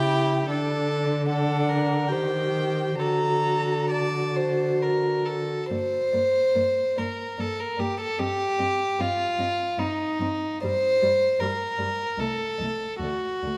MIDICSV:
0, 0, Header, 1, 5, 480
1, 0, Start_track
1, 0, Key_signature, -2, "minor"
1, 0, Tempo, 806452
1, 296, Time_signature, 3, 2, 24, 8
1, 1259, Tempo, 896861
1, 3179, Tempo, 853485
1, 3659, Tempo, 833333
1, 4139, Tempo, 795756
1, 5579, Tempo, 855920
1, 6059, Tempo, 782269
1, 7019, Tempo, 829876
1, 7816, End_track
2, 0, Start_track
2, 0, Title_t, "Violin"
2, 0, Program_c, 0, 40
2, 0, Note_on_c, 0, 79, 106
2, 293, Note_off_c, 0, 79, 0
2, 755, Note_on_c, 0, 78, 104
2, 1238, Note_on_c, 0, 79, 92
2, 1247, Note_off_c, 0, 78, 0
2, 1718, Note_off_c, 0, 79, 0
2, 1721, Note_on_c, 0, 82, 108
2, 2215, Note_on_c, 0, 81, 78
2, 2223, Note_off_c, 0, 82, 0
2, 2696, Note_off_c, 0, 81, 0
2, 3182, Note_on_c, 0, 74, 52
2, 3227, Note_off_c, 0, 74, 0
2, 3413, Note_on_c, 0, 74, 48
2, 3458, Note_off_c, 0, 74, 0
2, 3655, Note_on_c, 0, 74, 49
2, 3701, Note_off_c, 0, 74, 0
2, 3887, Note_on_c, 0, 74, 45
2, 3933, Note_off_c, 0, 74, 0
2, 4131, Note_on_c, 0, 74, 43
2, 4179, Note_off_c, 0, 74, 0
2, 4364, Note_on_c, 0, 74, 42
2, 4413, Note_off_c, 0, 74, 0
2, 4618, Note_on_c, 0, 75, 56
2, 4666, Note_off_c, 0, 75, 0
2, 4860, Note_on_c, 0, 75, 51
2, 4908, Note_off_c, 0, 75, 0
2, 5113, Note_on_c, 0, 75, 54
2, 5161, Note_off_c, 0, 75, 0
2, 5349, Note_on_c, 0, 75, 54
2, 5397, Note_off_c, 0, 75, 0
2, 5579, Note_on_c, 0, 75, 56
2, 5624, Note_off_c, 0, 75, 0
2, 5809, Note_on_c, 0, 75, 51
2, 5854, Note_off_c, 0, 75, 0
2, 6044, Note_on_c, 0, 74, 57
2, 6092, Note_off_c, 0, 74, 0
2, 6293, Note_on_c, 0, 74, 53
2, 6342, Note_off_c, 0, 74, 0
2, 6518, Note_on_c, 0, 74, 54
2, 6567, Note_off_c, 0, 74, 0
2, 6759, Note_on_c, 0, 74, 52
2, 6808, Note_off_c, 0, 74, 0
2, 7007, Note_on_c, 0, 75, 46
2, 7054, Note_off_c, 0, 75, 0
2, 7239, Note_on_c, 0, 75, 44
2, 7286, Note_off_c, 0, 75, 0
2, 7496, Note_on_c, 0, 74, 49
2, 7542, Note_off_c, 0, 74, 0
2, 7727, Note_on_c, 0, 74, 42
2, 7774, Note_off_c, 0, 74, 0
2, 7816, End_track
3, 0, Start_track
3, 0, Title_t, "Violin"
3, 0, Program_c, 1, 40
3, 0, Note_on_c, 1, 67, 88
3, 286, Note_off_c, 1, 67, 0
3, 297, Note_on_c, 1, 69, 77
3, 744, Note_off_c, 1, 69, 0
3, 771, Note_on_c, 1, 69, 75
3, 1009, Note_on_c, 1, 70, 70
3, 1018, Note_off_c, 1, 69, 0
3, 1262, Note_on_c, 1, 72, 71
3, 1270, Note_off_c, 1, 70, 0
3, 1731, Note_on_c, 1, 69, 64
3, 1739, Note_off_c, 1, 72, 0
3, 2218, Note_off_c, 1, 69, 0
3, 2221, Note_on_c, 1, 74, 72
3, 2462, Note_on_c, 1, 72, 72
3, 2470, Note_off_c, 1, 74, 0
3, 2707, Note_on_c, 1, 70, 64
3, 2715, Note_off_c, 1, 72, 0
3, 2941, Note_on_c, 1, 69, 60
3, 2949, Note_off_c, 1, 70, 0
3, 3173, Note_off_c, 1, 69, 0
3, 3177, Note_on_c, 1, 72, 86
3, 3906, Note_on_c, 1, 70, 65
3, 3915, Note_off_c, 1, 72, 0
3, 4147, Note_on_c, 1, 69, 75
3, 4156, Note_off_c, 1, 70, 0
3, 4268, Note_on_c, 1, 70, 66
3, 4278, Note_off_c, 1, 69, 0
3, 4384, Note_on_c, 1, 67, 72
3, 4393, Note_off_c, 1, 70, 0
3, 4503, Note_off_c, 1, 67, 0
3, 4512, Note_on_c, 1, 69, 72
3, 4623, Note_on_c, 1, 67, 84
3, 4632, Note_off_c, 1, 69, 0
3, 5112, Note_on_c, 1, 65, 86
3, 5121, Note_off_c, 1, 67, 0
3, 5584, Note_on_c, 1, 63, 77
3, 5593, Note_off_c, 1, 65, 0
3, 6056, Note_off_c, 1, 63, 0
3, 6059, Note_on_c, 1, 72, 97
3, 6531, Note_on_c, 1, 70, 79
3, 6541, Note_off_c, 1, 72, 0
3, 7021, Note_on_c, 1, 69, 76
3, 7030, Note_off_c, 1, 70, 0
3, 7484, Note_off_c, 1, 69, 0
3, 7487, Note_on_c, 1, 66, 73
3, 7816, Note_off_c, 1, 66, 0
3, 7816, End_track
4, 0, Start_track
4, 0, Title_t, "Viola"
4, 0, Program_c, 2, 41
4, 0, Note_on_c, 2, 64, 78
4, 286, Note_off_c, 2, 64, 0
4, 295, Note_on_c, 2, 62, 72
4, 743, Note_off_c, 2, 62, 0
4, 771, Note_on_c, 2, 62, 82
4, 1251, Note_off_c, 2, 62, 0
4, 1262, Note_on_c, 2, 67, 66
4, 1722, Note_off_c, 2, 67, 0
4, 1732, Note_on_c, 2, 66, 56
4, 2212, Note_off_c, 2, 66, 0
4, 2225, Note_on_c, 2, 66, 70
4, 3046, Note_off_c, 2, 66, 0
4, 3179, Note_on_c, 2, 58, 46
4, 3224, Note_off_c, 2, 58, 0
4, 3425, Note_on_c, 2, 58, 44
4, 3470, Note_off_c, 2, 58, 0
4, 3655, Note_on_c, 2, 58, 50
4, 3701, Note_off_c, 2, 58, 0
4, 3896, Note_on_c, 2, 58, 45
4, 3942, Note_off_c, 2, 58, 0
4, 4135, Note_on_c, 2, 58, 48
4, 4183, Note_off_c, 2, 58, 0
4, 4380, Note_on_c, 2, 58, 49
4, 4428, Note_off_c, 2, 58, 0
4, 4624, Note_on_c, 2, 60, 53
4, 4672, Note_off_c, 2, 60, 0
4, 4865, Note_on_c, 2, 60, 47
4, 4914, Note_off_c, 2, 60, 0
4, 5105, Note_on_c, 2, 60, 58
4, 5153, Note_off_c, 2, 60, 0
4, 5346, Note_on_c, 2, 60, 46
4, 5394, Note_off_c, 2, 60, 0
4, 5583, Note_on_c, 2, 60, 50
4, 5628, Note_off_c, 2, 60, 0
4, 5822, Note_on_c, 2, 60, 58
4, 5867, Note_off_c, 2, 60, 0
4, 6064, Note_on_c, 2, 55, 58
4, 6113, Note_off_c, 2, 55, 0
4, 6299, Note_on_c, 2, 55, 49
4, 6348, Note_off_c, 2, 55, 0
4, 6537, Note_on_c, 2, 55, 62
4, 6586, Note_off_c, 2, 55, 0
4, 6773, Note_on_c, 2, 55, 45
4, 6822, Note_off_c, 2, 55, 0
4, 7024, Note_on_c, 2, 57, 52
4, 7071, Note_off_c, 2, 57, 0
4, 7268, Note_on_c, 2, 57, 43
4, 7314, Note_off_c, 2, 57, 0
4, 7505, Note_on_c, 2, 57, 43
4, 7551, Note_off_c, 2, 57, 0
4, 7749, Note_on_c, 2, 57, 42
4, 7796, Note_off_c, 2, 57, 0
4, 7816, End_track
5, 0, Start_track
5, 0, Title_t, "Cello"
5, 0, Program_c, 3, 42
5, 0, Note_on_c, 3, 49, 86
5, 287, Note_off_c, 3, 49, 0
5, 290, Note_on_c, 3, 50, 82
5, 1256, Note_on_c, 3, 51, 74
5, 1265, Note_off_c, 3, 50, 0
5, 1724, Note_off_c, 3, 51, 0
5, 1727, Note_on_c, 3, 50, 68
5, 3038, Note_off_c, 3, 50, 0
5, 3180, Note_on_c, 3, 43, 54
5, 3225, Note_off_c, 3, 43, 0
5, 3421, Note_on_c, 3, 43, 48
5, 3466, Note_off_c, 3, 43, 0
5, 3659, Note_on_c, 3, 43, 53
5, 3705, Note_off_c, 3, 43, 0
5, 3906, Note_on_c, 3, 43, 52
5, 3952, Note_off_c, 3, 43, 0
5, 4135, Note_on_c, 3, 43, 53
5, 4183, Note_off_c, 3, 43, 0
5, 4379, Note_on_c, 3, 43, 56
5, 4428, Note_off_c, 3, 43, 0
5, 4622, Note_on_c, 3, 43, 55
5, 4670, Note_off_c, 3, 43, 0
5, 4864, Note_on_c, 3, 43, 53
5, 4913, Note_off_c, 3, 43, 0
5, 5109, Note_on_c, 3, 43, 61
5, 5157, Note_off_c, 3, 43, 0
5, 5342, Note_on_c, 3, 43, 50
5, 5391, Note_off_c, 3, 43, 0
5, 5580, Note_on_c, 3, 43, 62
5, 5625, Note_off_c, 3, 43, 0
5, 5813, Note_on_c, 3, 43, 63
5, 5858, Note_off_c, 3, 43, 0
5, 6057, Note_on_c, 3, 43, 64
5, 6106, Note_off_c, 3, 43, 0
5, 6298, Note_on_c, 3, 43, 52
5, 6347, Note_off_c, 3, 43, 0
5, 6527, Note_on_c, 3, 43, 63
5, 6576, Note_off_c, 3, 43, 0
5, 6767, Note_on_c, 3, 43, 58
5, 6816, Note_off_c, 3, 43, 0
5, 7010, Note_on_c, 3, 36, 55
5, 7057, Note_off_c, 3, 36, 0
5, 7248, Note_on_c, 3, 36, 50
5, 7294, Note_off_c, 3, 36, 0
5, 7484, Note_on_c, 3, 38, 51
5, 7530, Note_off_c, 3, 38, 0
5, 7735, Note_on_c, 3, 38, 39
5, 7781, Note_off_c, 3, 38, 0
5, 7816, End_track
0, 0, End_of_file